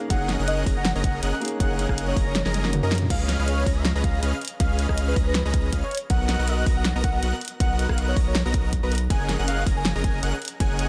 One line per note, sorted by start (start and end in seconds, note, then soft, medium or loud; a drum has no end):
0.00 0.08 A#3 loud
0.00 0.10 C#4 medium
0.00 0.11 D#4 medium
0.00 0.12 G#4 loud
0.08 0.37 F#1 loud
0.08 1.38 A#3 medium
0.08 1.39 C#4 medium
0.08 0.37 C#4 medium
0.08 1.40 D#4 medium
0.08 0.37 G#4 medium
0.08 1.40 G#4 loud
0.08 0.37 A#4 medium
0.08 0.37 D#5 medium
0.08 0.31 F#5 loud
0.08 0.37 F#5 medium
0.08 0.37 F#6 medium
0.08 kick loud
0.08 closed hi-hat medium
0.29 snare medium
0.29 closed hi-hat medium
0.39 0.65 F#1 loud
0.39 0.64 C#4 loud
0.39 0.64 G#4 medium
0.39 0.64 A#4 medium
0.39 0.64 D#5 medium
0.39 0.64 F#5 loud
0.39 0.65 F#6 loud
0.48 0.63 D#5 loud
0.48 closed hi-hat medium
0.66 0.93 F#1 loud
0.66 0.85 C#4 medium
0.66 0.85 G#4 medium
0.66 0.85 A#4 medium
0.66 0.85 D#5 medium
0.66 0.85 A#5 loud
0.66 0.85 A#6 loud
0.66 kick loud
0.66 open hi-hat loud
0.77 0.92 F#5 medium
0.85 snare loud
0.85 closed hi-hat medium
0.95 1.21 F#1 loud
0.95 1.21 C#4 medium
0.95 1.21 G#4 medium
0.95 1.21 A#4 medium
0.95 1.21 D#5 medium
0.95 1.21 A#5 medium
0.95 1.21 A#6 medium
1.04 1.20 F#5 loud
1.04 kick loud
1.04 closed hi-hat medium
1.23 1.33 F#1 loud
1.23 1.35 C#4 loud
1.23 1.35 G#4 medium
1.23 1.35 A#4 medium
1.23 1.35 D#5 medium
1.23 1.35 F#5 loud
1.23 1.35 F#6 loud
1.23 closed hi-hat medium
1.40 1.57 A#3 loud
1.40 1.58 C#4 medium
1.40 1.58 D#4 medium
1.40 1.59 G#4 loud
1.40 closed hi-hat soft
1.45 closed hi-hat medium
1.48 closed hi-hat medium
1.58 1.87 F#1 loud
1.58 2.61 A#3 medium
1.58 2.62 C#4 medium
1.58 1.87 C#4 medium
1.58 2.63 D#4 medium
1.58 1.87 G#4 medium
1.58 1.87 A#4 medium
1.58 1.87 D#5 medium
1.58 1.87 F#5 medium
1.58 1.76 F#5 loud
1.58 1.87 F#6 medium
1.58 kick loud
1.58 closed hi-hat medium
1.62 2.63 G#4 medium
1.79 closed hi-hat medium
1.89 2.15 F#1 loud
1.89 2.14 C#4 loud
1.89 2.14 G#4 medium
1.89 2.14 A#4 medium
1.89 2.14 D#5 medium
1.89 1.99 F5 medium
1.89 2.14 F#5 loud
1.89 2.14 F#6 loud
1.89 kick medium
1.89 cross-stick medium
1.98 closed hi-hat medium
2.08 2.17 C#5 medium
2.16 2.43 F#1 loud
2.16 2.35 C#4 medium
2.16 2.35 G#4 medium
2.16 2.35 A#4 medium
2.16 2.35 D#5 medium
2.16 2.35 A#5 loud
2.16 2.35 A#6 loud
2.16 kick loud
2.16 open hi-hat medium
2.27 2.42 C#5 loud
2.35 snare loud
2.35 closed hi-hat medium
2.35 high tom medium
2.45 2.81 F#1 loud
2.45 2.71 C#4 medium
2.45 2.71 G#4 medium
2.45 2.71 A#4 medium
2.45 2.71 D#5 medium
2.45 2.71 A#5 medium
2.45 2.71 A#6 medium
2.45 snare medium
2.54 closed hi-hat medium
2.54 high tom medium
2.62 3.07 A#3 medium
2.62 3.08 C#4 medium
2.62 3.08 D#4 medium
2.62 3.09 F#4 medium
2.62 snare medium
2.73 closed hi-hat medium
2.73 mid tom medium
2.83 3.08 F#2 loud
2.83 2.94 C#4 medium
2.83 2.94 G#4 medium
2.83 2.94 A#4 medium
2.83 2.98 A#4 medium
2.83 2.94 D#5 medium
2.83 2.94 A#5 medium
2.83 2.94 A#6 medium
2.92 snare loud
2.92 closed hi-hat medium
2.95 closed hi-hat medium
2.98 closed hi-hat medium
2.98 mid tom medium
3.10 3.37 C#2 medium
3.10 3.37 C#4 medium
3.10 3.37 G#4 medium
3.10 3.37 B4 medium
3.10 3.37 D#5 medium
3.10 3.37 F5 medium
3.10 3.31 F5 loud
3.10 3.37 F6 medium
3.10 kick loud
3.10 closed hi-hat medium
3.10 crash loud
3.29 snare medium
3.29 closed hi-hat medium
3.39 3.65 C#2 loud
3.39 3.64 C#4 loud
3.39 3.64 G#4 medium
3.39 3.64 B4 medium
3.39 3.64 D#5 medium
3.39 3.64 F5 loud
3.39 3.64 F6 loud
3.48 3.78 C#5 loud
3.48 closed hi-hat medium
3.66 3.93 C#2 loud
3.66 3.85 C#4 medium
3.66 3.85 G#4 medium
3.66 3.85 B4 medium
3.66 3.85 D#5 medium
3.66 3.85 A#5 loud
3.66 3.85 A#6 loud
3.66 kick loud
3.66 open hi-hat medium
3.77 3.92 F5 medium
3.85 snare loud
3.85 closed hi-hat medium
3.95 4.21 C#2 loud
3.95 4.21 C#4 medium
3.95 4.21 G#4 medium
3.95 4.21 B4 medium
3.95 4.21 D#5 medium
3.95 4.21 A#5 medium
3.95 4.21 A#6 medium
4.04 4.20 F5 loud
4.04 kick loud
4.04 closed hi-hat medium
4.22 4.33 C#2 loud
4.22 4.35 C#4 loud
4.22 4.35 G#4 medium
4.22 4.35 B4 medium
4.22 4.35 D#5 medium
4.22 4.35 F5 loud
4.22 4.35 F6 loud
4.22 closed hi-hat medium
4.41 closed hi-hat medium
4.45 closed hi-hat medium
4.48 closed hi-hat medium
4.60 4.87 C#2 loud
4.60 4.87 C#4 medium
4.60 4.87 G#4 medium
4.60 4.87 B4 medium
4.60 4.87 D#5 medium
4.60 4.87 F5 medium
4.60 4.76 F5 loud
4.60 4.87 F6 medium
4.60 kick loud
4.60 closed hi-hat medium
4.79 closed hi-hat medium
4.89 5.15 C#2 loud
4.89 5.14 C#4 loud
4.89 5.14 G#4 medium
4.89 5.14 B4 medium
4.89 5.14 D#5 medium
4.89 4.99 D#5 medium
4.89 5.14 F5 loud
4.89 5.14 F6 loud
4.89 kick medium
4.89 cross-stick medium
4.98 closed hi-hat medium
5.08 5.17 B4 medium
5.16 5.43 C#2 loud
5.16 5.35 G#4 medium
5.16 5.35 B4 medium
5.16 5.35 D#5 medium
5.16 5.35 A#6 loud
5.16 kick loud
5.16 open hi-hat medium
5.27 5.42 B4 medium
5.35 snare loud
5.35 closed hi-hat medium
5.45 5.71 C#2 loud
5.45 5.71 C#4 medium
5.45 5.71 G#4 medium
5.45 5.71 B4 medium
5.45 5.71 D#5 medium
5.45 5.71 A#5 medium
5.45 5.71 A#6 medium
5.54 kick loud
5.54 closed hi-hat medium
5.72 5.83 C#2 medium
5.72 5.85 C#4 loud
5.72 5.85 G#4 medium
5.72 5.85 B4 medium
5.72 5.85 D#5 medium
5.72 5.85 F5 loud
5.72 5.85 F6 loud
5.72 kick medium
5.72 closed hi-hat medium
5.83 5.98 C#5 loud
5.91 closed hi-hat soft
5.95 closed hi-hat medium
5.97 closed hi-hat medium
6.10 6.37 B1 loud
6.10 6.37 B3 medium
6.10 6.37 F#4 medium
6.10 6.37 A#4 medium
6.10 6.37 D#5 medium
6.10 6.37 F#5 medium
6.10 6.49 F#5 loud
6.10 6.37 F#6 medium
6.10 kick loud
6.10 closed hi-hat medium
6.29 snare medium
6.29 closed hi-hat medium
6.39 6.65 B1 loud
6.39 6.64 B3 loud
6.39 6.64 F#4 medium
6.39 6.64 A#4 medium
6.39 6.64 D#5 medium
6.39 6.64 F#5 loud
6.39 6.64 F#6 loud
6.48 6.63 D#5 loud
6.48 closed hi-hat medium
6.66 6.93 B1 loud
6.66 6.85 B3 loud
6.66 6.85 F#4 medium
6.66 6.85 A#4 medium
6.66 6.85 D#5 medium
6.66 6.85 A#5 loud
6.66 6.85 A#6 loud
6.66 kick loud
6.66 open hi-hat medium
6.77 6.92 F#5 medium
6.85 snare loud
6.85 closed hi-hat medium
6.95 7.21 B1 medium
6.95 7.21 B3 medium
6.95 7.21 F#4 medium
6.95 7.21 A#4 medium
6.95 7.21 D#5 medium
6.95 7.21 A#5 medium
6.95 7.21 A#6 medium
7.04 7.20 F#5 medium
7.04 kick loud
7.04 closed hi-hat medium
7.23 7.33 B1 loud
7.23 7.35 B3 loud
7.23 7.35 F#4 medium
7.23 7.35 A#4 medium
7.23 7.35 D#5 medium
7.23 7.35 F#5 loud
7.23 7.35 F#6 loud
7.23 closed hi-hat medium
7.41 closed hi-hat soft
7.45 closed hi-hat medium
7.48 closed hi-hat medium
7.60 7.87 B1 loud
7.60 7.87 B3 medium
7.60 7.87 F#4 medium
7.60 7.87 A#4 medium
7.60 7.87 D#5 medium
7.60 7.87 F#5 medium
7.60 7.76 F#5 loud
7.60 7.87 F#6 medium
7.60 kick loud
7.60 closed hi-hat medium
7.79 closed hi-hat medium
7.89 8.15 B1 loud
7.89 8.14 B3 loud
7.89 8.14 D#5 medium
7.89 7.99 F5 medium
7.89 8.14 F#6 loud
7.89 kick medium
7.89 cross-stick medium
7.98 closed hi-hat medium
8.08 8.18 C#5 medium
8.16 8.43 B1 medium
8.16 8.35 F#4 medium
8.16 8.35 A#4 medium
8.16 8.35 A#5 loud
8.16 8.35 A#6 loud
8.16 kick loud
8.16 open hi-hat medium
8.27 8.42 C#5 medium
8.35 snare loud
8.35 closed hi-hat medium
8.45 8.81 B1 loud
8.45 8.71 B3 medium
8.45 8.71 F#4 medium
8.45 8.71 A#4 medium
8.45 8.71 D#5 medium
8.45 8.71 A#5 medium
8.45 8.71 A#6 medium
8.54 kick loud
8.54 closed hi-hat medium
8.73 kick medium
8.73 closed hi-hat medium
8.83 9.09 B1 loud
8.83 8.94 B3 medium
8.83 8.94 F#4 medium
8.83 8.94 A#4 medium
8.83 8.98 B4 loud
8.83 8.94 D#5 medium
8.83 8.94 A#5 medium
8.83 8.94 A#6 medium
8.92 closed hi-hat soft
8.95 closed hi-hat medium
8.98 closed hi-hat medium
9.10 9.37 F#1 loud
9.10 9.37 C#4 medium
9.10 9.37 G#4 medium
9.10 9.37 A#4 medium
9.10 9.37 D#5 medium
9.10 9.37 F#5 medium
9.10 9.31 G#5 loud
9.10 9.37 F#6 medium
9.10 kick loud
9.10 closed hi-hat medium
9.10 ride soft
9.29 snare medium
9.29 closed hi-hat medium
9.39 9.65 F#1 loud
9.39 9.64 C#4 loud
9.39 9.64 G#4 medium
9.39 9.64 A#4 medium
9.39 9.64 D#5 medium
9.39 9.64 F#5 loud
9.39 9.64 F#6 loud
9.48 9.63 F5 medium
9.48 closed hi-hat medium
9.66 9.93 F#1 loud
9.66 9.85 C#4 medium
9.66 9.85 A#4 medium
9.66 9.85 D#5 medium
9.66 9.85 A#5 loud
9.66 9.85 A#6 loud
9.66 kick loud
9.66 open hi-hat medium
9.77 9.92 G#5 medium
9.85 snare loud
9.85 closed hi-hat medium
9.85 ride soft
9.95 10.21 F#1 loud
9.95 10.21 C#4 medium
9.95 10.21 G#4 medium
9.95 10.21 A#4 medium
9.95 10.21 D#5 medium
9.95 10.21 A#5 medium
9.95 10.21 A#6 medium
10.04 10.20 G#5 loud
10.04 kick loud
10.04 closed hi-hat medium
10.22 10.34 F#1 loud
10.22 10.35 C#4 loud
10.22 10.35 G#4 medium
10.22 10.35 A#4 medium
10.22 10.35 D#5 medium
10.22 10.35 F#5 loud
10.22 10.35 F#6 loud
10.22 closed hi-hat medium
10.42 closed hi-hat soft
10.45 closed hi-hat medium
10.48 closed hi-hat medium
10.60 10.87 F#1 loud
10.60 10.87 C#4 medium
10.60 10.87 G#4 medium
10.60 10.87 A#4 medium
10.60 10.87 D#5 medium
10.60 10.87 F#5 medium
10.60 10.89 G#5 loud
10.60 10.87 F#6 medium
10.60 kick loud
10.60 closed hi-hat medium
10.60 ride soft
10.79 closed hi-hat medium